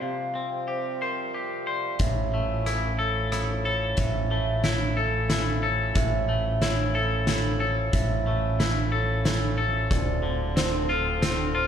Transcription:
Already playing: C3 G3 F4 G4 C5
0.01 C3 F3 F5
0.35 C4
0.68 G4 C5
1.01 A#4 C5
1.34 G4
1.67 C5 D5
1.99 A1 A2 C#4 E4 E5, kick, closed hi-hat
2.34 A3
2.66 E4 C#5, cross-stick, closed hi-hat
2.99 A4
3.32 E4, cross-stick, closed hi-hat
3.65 A4 C#5
3.97 A1 A2 E5, kick, closed hi-hat
4.31 A3
4.63 E4 C#5, snare, closed hi-hat
4.96 A4
5.30 E4, snare, closed hi-hat
5.63 A4 C#5
5.95 A1 A2 E5, kick, closed hi-hat
6.29 A3
6.61 E4 C#5, snare, closed hi-hat
6.94 A4
7.27 E4, snare, closed hi-hat
7.60 A4 C#5
7.93 A1 A2 E5, kick, closed hi-hat
8.27 A3
8.59 E4 C#5, snare, closed hi-hat
8.92 A4
9.25 E4, snare, closed hi-hat
9.57 A4 C#5
9.91 D1 D2 D3 C4 F4 D5, kick, closed hi-hat
10.23 D3
10.56 C4 C5, snare, closed hi-hat
10.89 F4 A4
11.22 C4, snare, closed hi-hat
11.55 F4 C5

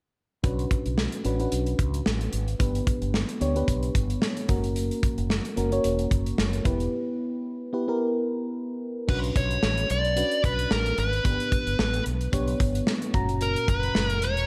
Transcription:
0.43 B1 C#4 D4 F#4 B4, kick, closed hi-hat
0.59 closed hi-hat
0.71 kick, closed hi-hat
0.86 B1, closed hi-hat
0.98 snare
1.12 closed hi-hat
1.25 A1 C#4 D4 F#4 B4, closed hi-hat
1.39 C#4 D4 F#4 B4, closed hi-hat
1.52 B1, closed hi-hat
1.66 closed hi-hat
1.79 C#2, kick, closed hi-hat
1.94 closed hi-hat
2.06 A1, snare
2.21 closed hi-hat
2.33 G#1, closed hi-hat
2.48 closed hi-hat
2.59 G1 B3 D4 G4 B4, kick, closed hi-hat
2.75 closed hi-hat
2.87 kick, closed hi-hat
3.02 G1, closed hi-hat
3.14 snare
3.29 closed hi-hat
3.40 D2 B3 D4 G4 C#5, closed hi-hat
3.55 B3 D4 G4 B4, closed hi-hat
3.68 B1, kick, closed hi-hat
3.83 closed hi-hat
3.95 G1, kick, closed hi-hat
4.10 closed hi-hat
4.22 snare
4.37 closed hi-hat
4.48 F#1 A#3 C#4 F#4 A#4, kick, closed hi-hat
4.64 closed hi-hat
4.76 closed hi-hat
4.91 closed hi-hat
5.03 kick, closed hi-hat
5.18 F#1, closed hi-hat
5.30 snare
5.45 closed hi-hat
5.57 F#1 A#3 C#4 F#4 A#4, closed hi-hat
5.71 A#3 C#4 F#4 C#5, closed hi-hat
5.84 E1, closed hi-hat
5.99 closed hi-hat
6.11 F#1, kick, closed hi-hat
6.26 closed hi-hat
6.38 F#1, snare
6.53 closed hi-hat
6.64 E1 B3 E4 G4 B4, kick, closed hi-hat
6.80 closed hi-hat
7.73 B3 E4 G4 B4
7.88 B3 E4 G4 A#4
9.08 B1 C#4 D4 F#4 B4, kick, crash
9.24 closed hi-hat
9.36 B1 C#5, kick, closed hi-hat
9.51 closed hi-hat
9.63 A1, snare
9.77 closed hi-hat
9.90 B1 D5, closed hi-hat
10.05 closed hi-hat
10.16 C#4 D4 F#4 B4, closed hi-hat
10.31 closed hi-hat
10.44 B1 B4, kick, closed hi-hat
10.59 closed hi-hat
10.71 A1 A#4, snare
10.86 closed hi-hat
10.98 G#1 B4, closed hi-hat
11.13 closed hi-hat
11.24 G1 B3 D4 G4 B4, kick, closed hi-hat
11.40 closed hi-hat
11.52 kick, closed hi-hat
11.67 G1, closed hi-hat
11.79 A1, snare
11.94 closed hi-hat
12.06 B1, closed hi-hat
12.21 closed hi-hat
12.32 B1 B3 D4 G4 C#5, kick, closed hi-hat
12.48 closed hi-hat
12.60 G1, kick, closed hi-hat
12.75 closed hi-hat
12.87 snare
13.02 closed hi-hat
13.13 F#1 A#2 C#4 F#4 A#5, kick, closed hi-hat
13.29 closed hi-hat
13.41 A#4, closed hi-hat
13.56 closed hi-hat
13.68 F#1 B4, kick, closed hi-hat
13.83 closed hi-hat
13.95 F#1, snare
14.09 A#4, closed hi-hat
14.22 E1 C#5, closed hi-hat
14.37 closed hi-hat

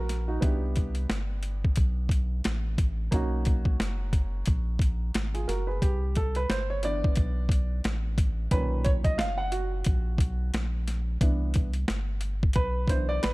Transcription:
Already playing: A#1 A#3 C#4 F#4 A#4
0.09 snare, closed hi-hat
0.28 D#4 F#4
0.41 C2 B3 D4 E4 G4, kick, closed hi-hat
0.76 kick, closed hi-hat
0.95 closed hi-hat
1.10 G1, snare, closed hi-hat
1.43 closed hi-hat
1.65 kick
1.76 B1, kick, closed hi-hat
2.09 kick, closed hi-hat
2.44 A1, snare, closed hi-hat
2.78 kick, closed hi-hat
3.11 B1 A#3 C#4 D#4 F#4, kick, closed hi-hat
3.45 kick, closed hi-hat
3.65 kick
3.80 F#1, snare, closed hi-hat
4.13 kick, closed hi-hat
4.46 A#1, kick, closed hi-hat
4.79 kick, closed hi-hat
5.14 G#1, snare, closed hi-hat
5.34 F4 G#4, closed hi-hat
5.48 F#1 F#4 A#4, snare, closed hi-hat
5.67 G#4 B4
5.82 C2 G4, kick, closed hi-hat
6.15 A4, kick, closed hi-hat
6.35 B4, closed hi-hat
6.50 G1 C5, snare, closed hi-hat
6.70 C#5
6.83 E3 B3 D4 D5, closed hi-hat
7.04 kick
7.16 B1, kick, closed hi-hat
7.49 kick, closed hi-hat
7.84 A1, snare, closed hi-hat
8.18 kick, closed hi-hat
8.51 B1 A#2 D#3 C#4 B4, kick, closed hi-hat
8.85 C#5, kick, closed hi-hat
9.04 D#5, kick, closed hi-hat
9.18 F#1 F5, snare, closed hi-hat
9.38 F#5
9.52 F#4, closed hi-hat
9.84 A#1, kick, closed hi-hat
10.18 B1, kick, closed hi-hat
10.54 A#1, snare, closed hi-hat
10.88 snare, closed hi-hat
11.21 C2 E3 B3 D4, kick, closed hi-hat
11.54 kick, closed hi-hat
11.74 closed hi-hat
11.88 G1, snare, closed hi-hat
12.21 closed hi-hat
12.43 kick
12.53 B1 B4, kick, closed hi-hat
12.88 E3 B3 D4 C5, kick, closed hi-hat
13.09 D5
13.23 A1 B4, snare, closed hi-hat

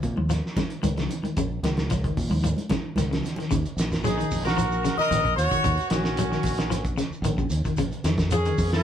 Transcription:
Already playing: D#3
0.03 A#2, kick, closed hi-hat, low conga, shekere
0.16 D#2 F3, high conga
0.29 F3, snare, closed hi-hat, shekere
0.46 snare
0.56 C#3, kick, snare, closed hi-hat, high conga, shekere
0.70 closed hi-hat
0.83 C#2 D#3, closed hi-hat, high conga, shekere
0.97 C#3, snare, closed hi-hat
1.09 closed hi-hat, low conga, shekere
1.23 D#3, closed hi-hat, high conga
1.37 A#1 C#3, kick, closed hi-hat, shekere
1.63 C#2 D#3, snare, closed hi-hat, high conga, shekere
1.77 snare, closed hi-hat, high conga
1.90 F3, kick, snare, closed hi-hat, shekere
2.04 D#3, kick, closed hi-hat
2.17 A#2, kick, open hi-hat, low conga, shekere
2.30 D#2 F3, high conga
2.42 F3, closed hi-hat, high conga, shekere
2.57 closed hi-hat, high conga
2.69 C#3, kick, snare, closed hi-hat, high conga, shekere
2.96 C#2 D#3, snare, closed hi-hat, high conga, shekere
3.11 C#3, snare, closed hi-hat
3.23 snare, closed hi-hat, low conga, shekere
3.36 D#3, closed hi-hat, low conga
3.41 snare
3.51 D#2 C#3, kick, closed hi-hat, shekere
3.65 closed hi-hat, shekere
3.77 A#1, snare, closed hi-hat, shekere
3.92 kick, snare, closed hi-hat, shekere
4.04 F#3 D#4 G#4, snare, closed hi-hat, shekere
4.18 D#3, closed hi-hat, shekere
4.31 A#1, kick, open hi-hat, shekere
4.43 F3 F#4 A#4, snare, shekere
4.57 F3, closed hi-hat, shekere
4.72 shekere
4.84 C#3, snare, closed hi-hat, shekere
4.98 A#4 D#5, muted fingered electric bass stroke, snare, shekere
5.11 A#1 D#3, snare, closed hi-hat, shekere
5.25 muted clean electric guitar stroke, kick, shekere
5.36 D#2 F#4 C#5, closed hi-hat, shekere
5.51 D#3, kick, closed hi-hat, shekere
5.64 D#2, muted clean electric guitar stroke, kick, closed hi-hat, shekere
5.77 closed hi-hat, shekere
5.89 A#1 D#3 C#4 F#4, snare, closed hi-hat, shekere
6.04 snare, shekere
6.17 F#3, closed hi-hat, shekere
6.32 D#3, snare, shekere
6.43 A#1, kick, snare, open hi-hat, shekere
6.58 F3, snare, closed hi-hat, shekere
6.70 F3, snare, closed hi-hat, shekere
6.85 kick, closed hi-hat, shekere
6.98 C#3, snare, closed hi-hat, shekere
7.10 muted fingered electric bass stroke, shekere
7.22 A#1 D#3, closed hi-hat, shekere
7.38 C#3, kick, shekere
7.50 D#2, closed hi-hat, shekere
7.64 D#3, kick, closed hi-hat, shekere
7.77 A#1 C#3, kick, closed hi-hat, shekere
7.91 closed hi-hat, shekere
8.04 F2 D#3, snare, closed hi-hat, shekere
8.18 kick, snare, closed hi-hat, shekere
8.31 F3 C#4 G#4, closed hi-hat, shekere
8.45 D#3, closed hi-hat, shekere
8.58 F2, kick, open hi-hat, shekere
8.73 F3 F4 A#4, snare, shekere

